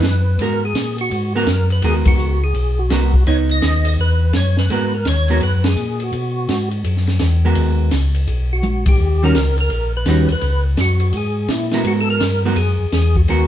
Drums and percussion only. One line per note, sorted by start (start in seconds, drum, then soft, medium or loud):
0.03 snare medium
0.03 hi-hat pedal soft
0.03 ride medium
0.39 ride medium
0.75 snare medium
0.75 hi-hat pedal medium
0.75 ride medium
0.98 ride soft
1.11 ride medium
1.47 snare medium
1.47 hi-hat pedal soft
1.47 ride medium
1.70 ride soft
1.82 ride medium
2.05 kick medium
2.05 ride medium
2.19 hi-hat pedal soft
2.55 ride medium
2.90 snare medium
2.90 hi-hat pedal soft
2.90 ride medium
3.14 kick medium
3.27 ride medium
3.49 ride soft
3.62 snare medium
3.62 hi-hat pedal medium
3.62 ride medium
3.85 ride medium
4.33 snare medium
4.33 hi-hat pedal soft
4.33 ride medium
4.57 snare medium
4.70 ride medium
5.05 snare medium
5.05 hi-hat pedal soft
5.05 ride medium
5.28 ride soft
5.41 ride medium
5.64 snare medium
5.64 ride medium
5.76 hi-hat pedal medium
6.00 ride soft
6.13 ride medium
6.49 snare medium
6.49 hi-hat pedal soft
6.49 ride medium
6.71 ride soft
6.84 ride medium
6.97 snare soft
7.07 snare soft
7.07 ride soft
7.19 snare medium
7.19 hi-hat pedal medium
7.19 ride medium
7.55 ride medium
7.91 snare medium
7.91 hi-hat pedal soft
7.91 ride medium
8.15 ride soft
8.27 ride medium
8.63 hi-hat pedal soft
8.63 high tom soft
8.86 kick medium
8.86 ride medium
9.35 snare medium
9.35 hi-hat pedal medium
9.35 ride medium
9.58 ride soft
9.70 ride medium
10.06 snare medium
10.06 hi-hat pedal soft
10.06 ride medium
10.29 ride soft
10.41 ride medium
10.77 snare medium
10.77 hi-hat pedal medium
10.77 ride medium
11.00 ride soft
11.13 ride medium
11.48 snare medium
11.48 hi-hat pedal medium
11.48 ride medium
11.71 snare soft
11.71 ride soft
11.85 ride medium
12.20 snare medium
12.20 hi-hat pedal soft
12.20 ride medium
12.56 ride medium
12.92 snare medium
12.92 hi-hat pedal medium
12.92 ride medium
13.16 kick medium
13.28 ride medium